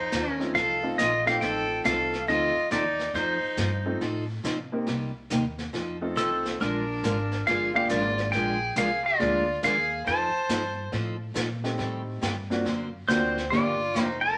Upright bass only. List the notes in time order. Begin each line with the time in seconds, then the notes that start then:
Already playing: F2
0.12 D#2
0.56 C2
0.98 A#1
1.41 A1
1.85 C2
2.28 D2
2.57 muted upright bass stroke
2.71 D#2
3.14 F2
3.43 muted upright bass stroke
3.58 G2
4.01 A2
4.44 C3
4.87 C2
5.31 D#2
5.74 F2
6.18 C2
6.61 A#1
7.03 G#1
7.47 G1
7.90 G#1
8.33 A#1
8.76 C2
9.20 D2
9.64 D#2
10.07 F2
10.35 muted upright bass stroke
10.49 G2
10.93 A2
11.36 A#2
11.79 A2
12.22 G2
12.66 F#2
13.09 D2
13.52 G1
13.95 F1